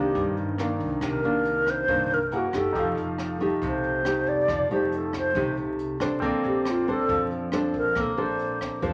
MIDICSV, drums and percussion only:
0, 0, Header, 1, 2, 480
1, 0, Start_track
1, 0, Tempo, 433526
1, 1132, Time_signature, 4, 2, 24, 8
1, 9888, End_track
2, 0, Start_track
2, 0, Title_t, "Drums"
2, 167, Note_on_c, 9, 42, 42
2, 168, Note_on_c, 9, 36, 59
2, 277, Note_off_c, 9, 42, 0
2, 279, Note_off_c, 9, 36, 0
2, 410, Note_on_c, 9, 42, 27
2, 520, Note_off_c, 9, 42, 0
2, 647, Note_on_c, 9, 37, 56
2, 647, Note_on_c, 9, 42, 42
2, 757, Note_off_c, 9, 37, 0
2, 757, Note_off_c, 9, 42, 0
2, 885, Note_on_c, 9, 42, 27
2, 886, Note_on_c, 9, 36, 26
2, 996, Note_off_c, 9, 42, 0
2, 997, Note_off_c, 9, 36, 0
2, 1121, Note_on_c, 9, 37, 65
2, 1121, Note_on_c, 9, 42, 38
2, 1125, Note_on_c, 9, 36, 56
2, 1232, Note_off_c, 9, 37, 0
2, 1232, Note_off_c, 9, 42, 0
2, 1235, Note_off_c, 9, 36, 0
2, 1364, Note_on_c, 9, 42, 25
2, 1474, Note_off_c, 9, 42, 0
2, 1604, Note_on_c, 9, 42, 43
2, 1715, Note_off_c, 9, 42, 0
2, 1844, Note_on_c, 9, 37, 55
2, 1844, Note_on_c, 9, 42, 27
2, 1846, Note_on_c, 9, 36, 23
2, 1955, Note_off_c, 9, 37, 0
2, 1955, Note_off_c, 9, 42, 0
2, 1957, Note_off_c, 9, 36, 0
2, 2081, Note_on_c, 9, 42, 44
2, 2086, Note_on_c, 9, 36, 64
2, 2192, Note_off_c, 9, 42, 0
2, 2196, Note_off_c, 9, 36, 0
2, 2325, Note_on_c, 9, 42, 30
2, 2436, Note_off_c, 9, 42, 0
2, 2566, Note_on_c, 9, 42, 47
2, 2676, Note_off_c, 9, 42, 0
2, 2803, Note_on_c, 9, 37, 61
2, 2803, Note_on_c, 9, 42, 27
2, 2805, Note_on_c, 9, 36, 25
2, 2914, Note_off_c, 9, 37, 0
2, 2914, Note_off_c, 9, 42, 0
2, 2915, Note_off_c, 9, 36, 0
2, 3047, Note_on_c, 9, 36, 58
2, 3048, Note_on_c, 9, 42, 44
2, 3158, Note_off_c, 9, 36, 0
2, 3159, Note_off_c, 9, 42, 0
2, 3290, Note_on_c, 9, 42, 31
2, 3401, Note_off_c, 9, 42, 0
2, 3526, Note_on_c, 9, 37, 55
2, 3526, Note_on_c, 9, 42, 44
2, 3636, Note_off_c, 9, 37, 0
2, 3636, Note_off_c, 9, 42, 0
2, 3766, Note_on_c, 9, 36, 24
2, 3767, Note_on_c, 9, 42, 27
2, 3876, Note_off_c, 9, 36, 0
2, 3877, Note_off_c, 9, 42, 0
2, 4006, Note_on_c, 9, 36, 63
2, 4006, Note_on_c, 9, 42, 45
2, 4117, Note_off_c, 9, 36, 0
2, 4117, Note_off_c, 9, 42, 0
2, 4244, Note_on_c, 9, 42, 26
2, 4355, Note_off_c, 9, 42, 0
2, 4484, Note_on_c, 9, 37, 65
2, 4484, Note_on_c, 9, 42, 44
2, 4595, Note_off_c, 9, 37, 0
2, 4595, Note_off_c, 9, 42, 0
2, 4720, Note_on_c, 9, 42, 29
2, 4724, Note_on_c, 9, 36, 24
2, 4831, Note_off_c, 9, 42, 0
2, 4834, Note_off_c, 9, 36, 0
2, 4963, Note_on_c, 9, 37, 54
2, 4963, Note_on_c, 9, 42, 41
2, 4964, Note_on_c, 9, 36, 59
2, 5074, Note_off_c, 9, 37, 0
2, 5074, Note_off_c, 9, 42, 0
2, 5075, Note_off_c, 9, 36, 0
2, 5209, Note_on_c, 9, 42, 25
2, 5319, Note_off_c, 9, 42, 0
2, 5448, Note_on_c, 9, 42, 44
2, 5558, Note_off_c, 9, 42, 0
2, 5682, Note_on_c, 9, 37, 55
2, 5682, Note_on_c, 9, 42, 27
2, 5684, Note_on_c, 9, 36, 23
2, 5793, Note_off_c, 9, 37, 0
2, 5793, Note_off_c, 9, 42, 0
2, 5795, Note_off_c, 9, 36, 0
2, 5922, Note_on_c, 9, 42, 45
2, 5925, Note_on_c, 9, 36, 65
2, 6032, Note_off_c, 9, 42, 0
2, 6035, Note_off_c, 9, 36, 0
2, 6164, Note_on_c, 9, 42, 31
2, 6275, Note_off_c, 9, 42, 0
2, 6409, Note_on_c, 9, 42, 49
2, 6520, Note_off_c, 9, 42, 0
2, 6646, Note_on_c, 9, 37, 66
2, 6646, Note_on_c, 9, 42, 30
2, 6647, Note_on_c, 9, 36, 23
2, 6756, Note_off_c, 9, 37, 0
2, 6756, Note_off_c, 9, 42, 0
2, 6758, Note_off_c, 9, 36, 0
2, 6887, Note_on_c, 9, 42, 47
2, 6888, Note_on_c, 9, 36, 59
2, 6998, Note_off_c, 9, 42, 0
2, 6999, Note_off_c, 9, 36, 0
2, 7128, Note_on_c, 9, 42, 29
2, 7239, Note_off_c, 9, 42, 0
2, 7367, Note_on_c, 9, 37, 67
2, 7367, Note_on_c, 9, 42, 46
2, 7478, Note_off_c, 9, 37, 0
2, 7478, Note_off_c, 9, 42, 0
2, 7609, Note_on_c, 9, 42, 28
2, 7610, Note_on_c, 9, 36, 21
2, 7719, Note_off_c, 9, 42, 0
2, 7720, Note_off_c, 9, 36, 0
2, 7848, Note_on_c, 9, 42, 47
2, 7850, Note_on_c, 9, 36, 63
2, 7959, Note_off_c, 9, 42, 0
2, 7961, Note_off_c, 9, 36, 0
2, 8089, Note_on_c, 9, 42, 28
2, 8200, Note_off_c, 9, 42, 0
2, 8326, Note_on_c, 9, 37, 67
2, 8326, Note_on_c, 9, 42, 44
2, 8436, Note_off_c, 9, 37, 0
2, 8436, Note_off_c, 9, 42, 0
2, 8570, Note_on_c, 9, 36, 24
2, 8571, Note_on_c, 9, 42, 27
2, 8681, Note_off_c, 9, 36, 0
2, 8682, Note_off_c, 9, 42, 0
2, 8806, Note_on_c, 9, 37, 59
2, 8806, Note_on_c, 9, 42, 44
2, 8810, Note_on_c, 9, 36, 66
2, 8917, Note_off_c, 9, 37, 0
2, 8917, Note_off_c, 9, 42, 0
2, 8921, Note_off_c, 9, 36, 0
2, 9045, Note_on_c, 9, 42, 28
2, 9156, Note_off_c, 9, 42, 0
2, 9290, Note_on_c, 9, 42, 44
2, 9400, Note_off_c, 9, 42, 0
2, 9530, Note_on_c, 9, 36, 25
2, 9533, Note_on_c, 9, 37, 57
2, 9641, Note_off_c, 9, 36, 0
2, 9643, Note_off_c, 9, 37, 0
2, 9768, Note_on_c, 9, 42, 44
2, 9769, Note_on_c, 9, 36, 63
2, 9879, Note_off_c, 9, 42, 0
2, 9880, Note_off_c, 9, 36, 0
2, 9888, End_track
0, 0, End_of_file